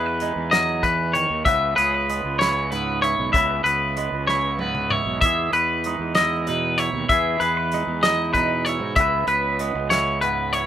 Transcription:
0.00 0.33 E2 medium
0.00 0.84 E3 medium
0.00 0.21 G#3 medium
0.00 1.47 E4 medium
0.00 0.52 B4 medium
0.06 1.46 B4 soft
0.20 0.53 G#3 medium
0.20 1.43 D#4 soft
0.20 closed hi-hat medium
0.36 1.26 E2 medium
0.51 0.84 F#3 medium
0.51 0.83 D#5 medium
0.51 snare loud
0.51 closed hi-hat medium
0.83 1.15 E3 medium
0.83 1.14 B4 medium
0.83 kick medium
0.83 closed hi-hat medium
1.13 1.46 D#3 medium
1.13 1.45 C#5 medium
1.13 closed hi-hat medium
1.30 1.45 D#2 medium
1.45 1.75 C#2 medium
1.45 3.33 C#3 medium
1.45 2.10 B3 medium
1.45 2.41 E4 medium
1.45 1.77 B4 medium
1.45 1.76 E5 medium
1.45 kick loud
1.45 closed hi-hat medium
1.76 2.22 C#2 medium
1.76 1.94 G#4 medium
1.76 2.38 B4 medium
1.76 closed hi-hat medium
1.94 3.34 B4 soft
2.09 3.97 G#3 medium
2.09 2.72 B3 soft
2.09 closed hi-hat medium
2.25 3.14 C#2 medium
2.39 3.03 E4 medium
2.39 2.70 C#5 medium
2.39 snare medium
2.39 closed hi-hat medium
2.70 3.34 G#2 medium
2.70 3.34 B3 soft
2.70 3.02 B4 medium
2.70 closed hi-hat medium
3.02 3.35 E4 medium
3.02 3.32 C#5 medium
3.02 closed hi-hat medium
3.19 3.33 B1 medium
3.33 3.63 C#2 medium
3.33 4.59 C#3 medium
3.33 3.97 B3 soft
3.33 4.29 E4 medium
3.33 3.66 B4 medium
3.33 3.64 E5 medium
3.33 kick loud
3.33 closed hi-hat medium
3.64 4.09 C#2 medium
3.64 4.27 B4 medium
3.64 5.25 B4 soft
3.64 closed hi-hat medium
3.97 5.85 G#3 medium
3.97 4.61 B3 soft
3.97 closed hi-hat medium
4.12 5.02 C#2 medium
4.27 4.92 E4 medium
4.27 4.59 C#5 medium
4.27 snare soft
4.59 5.23 G#2 medium
4.59 5.86 B3 soft
4.59 4.91 B4 medium
4.59 high tom medium
4.75 mid tom medium
4.90 5.24 E4 soft
4.90 5.21 C#5 medium
4.90 mid tom medium
5.06 5.21 B1 medium
5.21 5.51 E2 medium
5.21 7.10 E3 medium
5.21 6.17 E4 medium
5.21 5.53 E5 medium
5.21 kick loud
5.21 closed hi-hat medium
5.26 5.55 G#4 medium
5.53 5.97 E2 medium
5.53 6.15 B4 medium
5.53 7.13 B4 medium
5.53 closed hi-hat medium
5.84 7.73 G#3 soft
5.84 6.47 D#4 soft
5.84 closed hi-hat medium
6.00 6.90 E2 medium
6.15 6.79 E4 medium
6.15 6.47 D#5 medium
6.15 snare medium
6.15 closed hi-hat medium
6.47 7.06 B2 medium
6.47 7.07 D#4 soft
6.47 6.78 B4 medium
6.47 closed hi-hat medium
6.78 7.12 E4 medium
6.78 7.09 C#5 medium
6.78 closed hi-hat medium
6.93 7.08 D#2 medium
7.09 7.39 E2 medium
7.09 8.99 E3 medium
7.09 8.05 E4 medium
7.09 7.41 G#4 medium
7.09 7.41 E5 medium
7.09 kick loud
7.09 closed hi-hat medium
7.40 7.85 E2 medium
7.40 7.57 G#4 soft
7.40 8.03 B4 medium
7.40 closed hi-hat medium
7.57 8.97 B4 soft
7.72 9.59 G#3 medium
7.72 8.36 D#4 medium
7.72 closed hi-hat medium
7.87 8.77 E2 medium
8.03 8.68 E4 medium
8.03 8.33 D#5 medium
8.03 snare medium
8.03 closed hi-hat medium
8.34 8.94 B2 medium
8.34 8.95 D#4 soft
8.34 8.65 B4 medium
8.34 kick medium
8.34 closed hi-hat soft
8.65 9.00 E4 medium
8.65 8.96 C#5 medium
8.65 closed hi-hat medium
8.80 8.95 G#2 medium
8.96 9.26 C#2 medium
8.96 10.23 C#3 medium
8.96 9.60 B3 medium
8.96 9.27 E5 medium
8.96 kick loud
8.96 closed hi-hat medium
9.00 9.92 E4 medium
9.00 9.29 B4 medium
9.27 9.72 C#2 medium
9.27 9.90 B4 medium
9.27 10.66 B4 medium
9.27 closed hi-hat medium
9.59 10.66 G#3 medium
9.59 10.23 B3 medium
9.59 closed hi-hat medium
9.75 10.65 C#2 medium
9.90 10.54 E4 medium
9.90 10.21 C#5 medium
9.90 snare medium
9.90 closed hi-hat medium
10.21 10.66 G#2 medium
10.21 10.66 B3 medium
10.21 10.53 B4 medium
10.21 closed hi-hat medium
10.53 10.66 E4 medium
10.53 10.66 C#5 medium
10.53 closed hi-hat medium

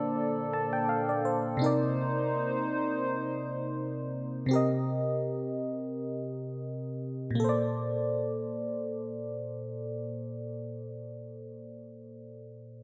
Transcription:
0.00 1.55 A#2 medium
0.00 1.56 A#3 medium
0.00 4.46 A#3 medium
0.00 1.57 D4 medium
0.00 1.58 A4 medium
0.00 1.59 A4 medium
0.00 1.24 C5 medium
0.00 1.57 D5 medium
0.53 0.71 A5 medium
0.73 0.88 G5 medium
0.89 1.07 F5 medium
1.09 1.24 D5 medium
1.25 1.59 C5 medium
1.57 4.44 C3 medium
1.57 4.45 C4 medium
1.61 4.46 D#4 medium
1.61 4.48 D#4 medium
1.61 4.48 A#4 medium
1.61 4.47 C5 medium
1.66 4.49 D5 medium
4.46 7.33 C3 medium
4.46 7.35 C4 medium
4.51 7.36 G4 medium
4.51 7.37 A#4 medium
4.56 7.38 D#5 medium
7.31 11.70 A#2 medium
7.35 11.72 A#3 medium
7.40 11.75 A4 medium
7.44 11.77 C5 medium
7.49 11.79 D5 medium

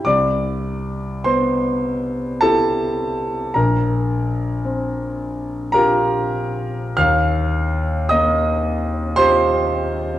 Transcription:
0.05 3.51 C2 soft
0.05 1.22 D5 medium
0.05 1.25 D6 medium
1.24 3.10 B3 soft
1.24 2.37 C5 medium
1.24 2.41 C6 medium
2.41 3.52 E4 soft
2.41 3.52 G4 soft
2.41 3.51 A4 medium
2.41 3.55 A5 medium
3.54 6.94 A#1 medium
3.54 5.14 A#4 soft
3.54 5.17 A#5 medium
4.65 6.48 C4 soft
5.72 6.94 F4 soft
5.72 6.94 G4 medium
5.72 6.94 A#4 medium
5.72 6.97 A#5 medium
6.97 10.19 D#2 medium
6.97 8.07 F5 medium
6.97 8.10 F6 medium
8.09 9.82 A#3 soft
8.09 9.14 D#5 medium
8.09 9.17 D#6 medium
9.16 10.19 F4 medium
9.16 10.19 G4 medium
9.16 10.19 C5 medium
9.16 10.19 C6 loud

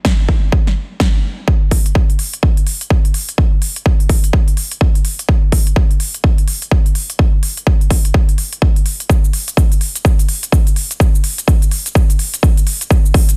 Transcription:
0.05 kick loud
0.05 snare loud
0.29 kick medium
0.52 kick loud
0.67 snare soft
1.00 kick loud
1.00 snare loud
1.48 kick loud
1.71 kick medium
1.71 open hi-hat loud
1.86 closed hi-hat medium
1.95 kick loud
2.10 closed hi-hat soft
2.19 open hi-hat loud
2.34 closed hi-hat medium
2.43 kick loud
2.57 closed hi-hat medium
2.67 open hi-hat loud
2.81 closed hi-hat medium
2.90 kick loud
3.05 closed hi-hat medium
3.14 open hi-hat loud
3.29 closed hi-hat medium
3.38 kick loud
3.62 open hi-hat loud
3.76 closed hi-hat medium
3.86 kick loud
4.00 closed hi-hat soft
4.09 kick medium
4.09 open hi-hat loud
4.24 closed hi-hat medium
4.33 kick loud
4.48 closed hi-hat soft
4.57 open hi-hat loud
4.72 closed hi-hat medium
4.81 kick loud
4.95 closed hi-hat medium
5.05 open hi-hat loud
5.19 closed hi-hat medium
5.29 kick loud
5.52 kick medium
5.52 open hi-hat loud
5.67 closed hi-hat medium
5.76 kick loud
5.91 closed hi-hat soft
6.00 open hi-hat loud
6.14 closed hi-hat medium
6.24 kick loud
6.38 closed hi-hat soft
6.48 open hi-hat loud
6.62 closed hi-hat medium
6.71 kick loud
6.86 closed hi-hat soft
6.95 open hi-hat loud
7.10 closed hi-hat medium
7.19 kick loud
7.43 open hi-hat loud
7.57 closed hi-hat medium
7.67 kick loud
7.81 closed hi-hat soft
7.90 kick medium
7.90 open hi-hat loud
8.05 closed hi-hat medium
8.14 kick loud
8.29 closed hi-hat soft
8.38 open hi-hat loud
8.53 closed hi-hat medium
8.62 kick loud
8.76 closed hi-hat soft
8.86 open hi-hat loud
9.00 closed hi-hat medium
9.10 kick loud
9.10 shaker medium
9.25 shaker soft
9.33 open hi-hat loud
9.48 closed hi-hat medium
9.48 shaker medium
9.57 kick loud
9.57 shaker medium
9.72 closed hi-hat soft
9.72 shaker soft
9.81 open hi-hat loud
9.95 closed hi-hat medium
9.95 shaker medium
10.05 kick loud
10.05 shaker medium
10.19 closed hi-hat soft
10.19 shaker soft
10.29 open hi-hat loud
10.43 closed hi-hat medium
10.43 shaker medium
10.52 kick loud
10.52 shaker medium
10.67 closed hi-hat medium
10.67 shaker soft
10.76 open hi-hat loud
10.91 closed hi-hat medium
10.91 shaker medium
11.00 kick loud
11.00 shaker medium
11.15 shaker soft
11.24 open hi-hat loud
11.38 closed hi-hat medium
11.38 shaker medium
11.48 kick loud
11.48 shaker medium
11.62 closed hi-hat soft
11.62 shaker soft
11.71 open hi-hat loud
11.86 closed hi-hat medium
11.86 shaker medium
11.95 kick loud
11.95 shaker medium
12.10 closed hi-hat medium
12.10 shaker soft
12.19 open hi-hat loud
12.34 closed hi-hat medium
12.34 shaker medium
12.43 kick loud
12.43 shaker medium
12.57 closed hi-hat medium
12.57 shaker soft
12.67 open hi-hat loud
12.81 closed hi-hat medium
12.81 shaker medium
12.91 kick loud
12.91 shaker medium
13.06 shaker soft
13.14 kick loud
13.14 open hi-hat loud
13.29 closed hi-hat medium
13.29 shaker medium

